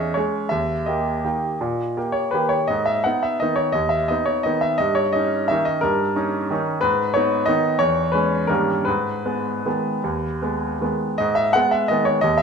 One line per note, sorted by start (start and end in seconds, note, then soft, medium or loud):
0.00 0.17 E2 soft
0.00 0.12 C#4 soft
0.00 0.12 G#4 soft
0.00 0.14 D#5 medium
0.00 0.17 E5 medium
0.14 0.47 G#3 soft
0.14 0.48 C#4 soft
0.14 0.48 G#4 soft
0.14 0.50 C#5 soft
0.49 0.86 D#2 soft
0.49 0.86 E5 medium
0.86 1.20 A#3 soft
0.86 1.21 G4 soft
0.86 2.15 D#5 soft
1.24 1.57 D#3 soft
1.24 1.57 A#3 soft
1.24 1.58 G4 soft
1.61 1.96 A#2 soft
1.97 2.30 A#3 soft
1.97 2.30 G4 soft
2.12 2.32 C#5 soft
2.31 2.66 D#3 soft
2.31 2.66 A#3 soft
2.31 2.66 G4 soft
2.31 2.50 B4 medium
2.49 2.68 C#5 soft
2.68 3.05 G#2 soft
2.68 2.86 D#5 medium
2.86 3.05 E5 medium
3.04 3.38 B3 soft
3.04 3.39 D#4 soft
3.04 3.23 F#5 medium
3.23 3.41 E5 medium
3.40 3.73 D#3 soft
3.40 3.73 B3 soft
3.40 3.73 D#4 soft
3.40 3.58 D#5 medium
3.56 3.74 C#5 medium
3.72 4.09 D#2 soft
3.72 3.91 D#5 medium
3.89 4.09 E5 medium
4.08 4.43 B3 soft
4.08 4.43 D#4 soft
4.08 4.27 D#5 medium
4.26 4.45 C#5 medium
4.43 4.77 D#3 soft
4.43 4.78 B3 soft
4.43 4.78 D#4 soft
4.43 4.63 D#5 medium
4.61 4.80 E5 medium
4.78 5.14 G2 soft
4.78 4.96 D#5 medium
4.95 5.14 C#5 medium
5.13 5.47 C#4 soft
5.13 5.47 D#4 soft
5.13 5.49 D#5 medium
5.48 5.80 D#3 soft
5.48 5.81 C#4 soft
5.48 5.81 D#4 soft
5.48 5.66 E5 medium
5.65 5.83 D#5 medium
5.81 6.16 G2 soft
5.81 6.66 A#4 medium
6.16 6.47 C#4 soft
6.16 6.47 D#4 soft
6.50 6.80 D#3 soft
6.50 6.81 C#4 soft
6.50 6.81 D#4 soft
6.81 7.14 G#2 soft
6.81 7.14 B4 medium
7.14 7.45 B3 soft
7.14 7.46 D#4 soft
7.14 7.47 C#5 medium
7.46 7.78 D#3 soft
7.46 7.78 B3 soft
7.46 7.78 D#4 soft
7.46 7.80 D#5 medium
7.79 8.13 E2 soft
7.79 8.13 C#5 medium
8.12 8.46 G#3 soft
8.12 8.46 C#4 soft
8.12 8.49 B4 medium
8.47 8.85 G2 soft
8.47 8.83 D#3 soft
8.47 8.83 A#3 soft
8.47 8.83 C#4 soft
8.47 8.85 A#4 medium
8.85 9.25 G#2 soft
8.85 10.80 B4 medium
9.25 9.61 G#3 soft
9.25 9.62 B3 soft
9.66 10.00 D#3 soft
9.66 10.01 G#3 soft
9.66 10.01 B3 soft
10.04 10.41 D#2 soft
10.42 10.77 G#3 soft
10.42 10.78 B3 soft
10.81 11.16 D#3 soft
10.81 11.16 G#3 soft
10.81 11.17 B3 soft
11.18 11.54 G#2 soft
11.18 11.37 D#5 medium
11.35 11.54 E5 medium
11.53 11.87 G#3 soft
11.53 11.87 B3 soft
11.53 11.72 F#5 medium
11.71 11.90 E5 medium
11.88 12.21 D#3 soft
11.88 12.21 G#3 soft
11.88 12.21 B3 soft
11.88 12.06 D#5 medium
12.05 12.23 C#5 medium
12.21 12.42 D#2 soft
12.21 12.39 D#5 medium
12.38 12.42 E5 medium